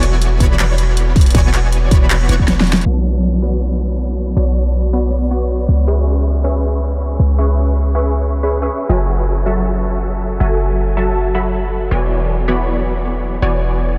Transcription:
0.00 0.39 E1 loud
0.00 0.38 E3 loud
0.00 0.38 B3 medium
0.00 0.38 F#4 medium
0.00 0.38 C#5 medium
0.00 0.38 D5 medium
0.00 0.38 G#5 loud
0.00 closed hi-hat medium
0.22 closed hi-hat medium
0.40 1.33 E1 loud
0.40 1.33 E3 medium
0.40 1.33 B3 medium
0.40 1.33 F#4 medium
0.40 1.33 C#5 medium
0.40 1.33 D5 medium
0.40 1.33 B5 loud
0.40 kick medium
0.40 closed hi-hat medium
0.59 clap loud
0.59 closed hi-hat medium
0.59 crash soft
0.78 closed hi-hat medium
0.97 closed hi-hat medium
1.16 kick loud
1.16 open hi-hat medium
1.21 closed hi-hat medium
1.26 closed hi-hat medium
1.31 closed hi-hat medium
1.35 1.90 E1 loud
1.35 1.89 E3 medium
1.35 1.89 B3 medium
1.35 1.89 F#4 medium
1.35 1.89 C#5 medium
1.35 1.89 D5 medium
1.35 1.89 G#5 loud
1.35 kick loud
1.35 closed hi-hat medium
1.35 crash soft
1.54 clap medium
1.54 closed hi-hat medium
1.72 closed hi-hat medium
1.91 2.27 E1 loud
1.91 2.27 E3 medium
1.91 2.27 B3 medium
1.91 2.27 F#4 medium
1.91 2.27 C#5 medium
1.91 2.27 D5 medium
1.91 2.27 B5 loud
1.91 kick loud
1.91 closed hi-hat medium
2.10 clap loud
2.10 closed hi-hat medium
2.10 crash soft
2.29 2.84 E1 loud
2.29 2.84 E3 medium
2.29 2.84 B3 medium
2.29 2.84 F#4 medium
2.29 2.84 C#5 medium
2.29 2.84 D5 medium
2.29 2.84 C#6 medium
2.29 closed hi-hat medium
2.39 kick medium
2.48 snare medium
2.48 closed hi-hat medium
2.60 snare medium
2.67 open hi-hat medium
2.72 snare loud
2.72 closed hi-hat medium
2.77 closed hi-hat medium
2.81 closed hi-hat medium
2.86 4.35 B1 medium
2.86 3.40 B3 medium
2.86 3.40 F#4 medium
2.86 3.40 C#5 medium
2.86 3.40 D5 medium
2.86 3.40 A5 loud
3.42 4.35 B3 medium
3.42 4.35 F#4 medium
3.42 4.35 C#5 medium
3.42 4.35 D5 medium
3.42 4.35 B5 loud
4.36 5.67 B1 medium
4.36 4.91 B3 medium
4.36 4.91 F#4 medium
4.36 4.91 C#5 medium
4.36 4.91 D5 medium
4.36 4.91 A5 medium
4.93 5.29 B3 medium
4.93 5.29 F#4 medium
4.93 5.29 C#5 medium
4.93 5.29 D5 medium
4.93 5.29 B5 loud
5.31 5.68 B3 medium
5.31 5.68 F#4 medium
5.31 5.68 C#5 medium
5.31 5.68 D5 medium
5.31 5.68 C#6 medium
5.69 7.18 C#2 medium
5.87 6.42 C#4 loud
5.87 6.42 G#4 medium
5.87 6.42 B4 medium
5.87 6.42 E5 medium
5.87 6.42 C#6 loud
6.44 7.36 C#4 medium
6.44 7.36 G#4 medium
6.44 7.36 B4 medium
6.44 7.36 E5 medium
6.44 7.36 C#6 loud
7.19 8.69 C#2 medium
7.38 7.93 C#4 medium
7.38 7.93 G#4 medium
7.38 7.93 B4 medium
7.38 7.93 E5 medium
7.38 7.93 C#6 medium
7.95 8.31 C#4 medium
7.95 8.31 G#4 medium
7.95 8.31 B4 medium
7.95 8.31 E5 medium
7.95 8.31 C#6 medium
8.43 8.60 C#4 medium
8.43 8.60 G#4 medium
8.43 8.60 B4 medium
8.43 8.60 E5 medium
8.43 8.60 C#6 medium
8.62 8.87 C#4 medium
8.62 8.87 G#4 medium
8.62 8.87 B4 medium
8.62 8.87 E5 medium
8.62 8.87 C#6 loud
8.89 10.39 F#1 medium
8.89 9.44 F#3 loud
8.89 9.44 F#4 medium
8.89 9.44 A4 medium
8.89 9.44 E5 medium
8.89 9.44 G#5 loud
9.46 10.38 F#3 medium
9.46 10.38 F#4 medium
9.46 10.38 A4 medium
9.46 10.38 E5 medium
9.46 10.38 A5 loud
10.40 11.90 F#1 medium
10.40 10.95 F#3 medium
10.40 10.95 F#4 medium
10.40 10.95 A4 medium
10.40 10.95 E5 medium
10.40 10.95 G#5 medium
10.97 11.33 F#3 medium
10.97 11.33 F#4 medium
10.97 11.33 A4 medium
10.97 11.33 E5 medium
10.97 11.33 A5 loud
11.35 11.89 F#3 medium
11.35 11.89 F#4 medium
11.35 11.89 A4 medium
11.35 11.89 E5 medium
11.35 11.89 B5 medium
11.91 13.41 E1 medium
11.91 12.46 E3 medium
11.91 12.46 B3 medium
11.91 12.46 F#4 medium
11.91 12.46 C#5 medium
11.91 12.46 D5 medium
11.91 12.46 G#5 loud
12.48 13.40 E3 medium
12.48 13.40 B3 medium
12.48 13.40 F#4 medium
12.48 13.40 C#5 medium
12.48 13.40 D5 medium
12.48 13.40 B5 loud
13.42 13.98 E1 medium
13.42 13.97 E3 medium
13.42 13.97 B3 medium
13.42 13.97 F#4 medium
13.42 13.97 C#5 medium
13.42 13.97 D5 medium
13.42 13.97 G#5 medium

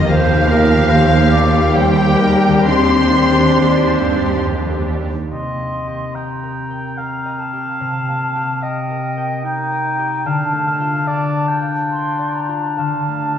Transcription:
0.00 2.47 D#3 medium
0.00 1.36 F3 medium
0.00 1.50 A#3 soft
0.00 2.62 A#3 medium
0.00 3.85 D#4 medium
0.00 1.45 F4 medium
0.00 2.56 G4 soft
0.04 1.75 F3 medium
0.04 5.07 G4 medium
0.04 2.68 A#4 soft
0.04 1.74 F5 medium
0.04 1.75 F5 medium
0.08 5.08 D#2 medium
0.08 3.44 D#2 medium
0.08 0.49 C5 medium
0.48 0.91 A#4 medium
0.90 1.31 C5 medium
1.32 1.74 D5 medium
1.74 2.66 G3 medium
1.74 2.21 C5 medium
1.74 2.66 G5 medium
2.20 2.68 A#4 medium
2.48 5.26 D#3 medium
2.53 5.28 D4 soft
2.57 5.86 G4 soft
2.61 4.44 C4 medium
2.61 6.51 C5 soft
2.66 5.07 D4 medium
2.66 4.89 C5 medium
2.66 4.41 C6 medium
3.57 3.98 D#2 medium
4.01 4.45 G2 medium
4.44 4.89 F2 medium
4.89 5.32 D#2 medium
5.32 7.79 C3 soft
5.32 9.41 C4 soft
5.32 6.17 D#5 soft
5.32 6.16 C6 soft
5.59 8.07 A#3 soft
5.87 7.52 G4 soft
6.14 7.24 D#5 soft
6.14 6.99 G5 soft
6.14 6.98 A#5 soft
6.43 6.98 A#4 soft
6.71 9.16 G5 soft
6.98 8.89 A#4 soft
6.98 8.64 F5 soft
6.98 7.41 A#5 soft
7.26 8.62 D#5 soft
7.40 8.62 A5 soft
7.53 8.34 G4 soft
7.81 10.30 C3 soft
8.09 10.30 A#3 soft
8.36 9.98 G4 soft
8.63 9.44 D#5 medium
8.63 9.70 D#5 soft
8.63 9.43 G5 medium
8.90 9.44 A#4 soft
9.17 10.30 G5 soft
9.44 10.25 D#4 medium
9.44 10.30 A#4 soft
9.44 10.28 G5 medium
9.44 10.25 G5 soft
9.72 10.30 D#5 soft
9.99 10.30 G4 soft
10.26 12.77 D3 soft
10.26 13.39 D4 medium
10.26 10.66 F5 medium
10.26 11.07 A5 soft
10.53 13.07 A3 soft
10.67 11.09 F5 medium
10.80 12.47 F4 soft
11.07 12.18 D5 soft
11.07 11.48 D5 soft
11.07 11.62 A5 soft
11.48 12.47 G5 soft
11.62 13.39 F5 soft
11.91 12.36 C6 soft
12.19 13.39 D5 soft
12.34 12.80 A#5 soft
12.49 13.37 F4 soft
12.78 13.39 D3 soft
12.78 13.39 F5 soft
12.78 13.39 A5 soft
13.08 13.39 A3 soft

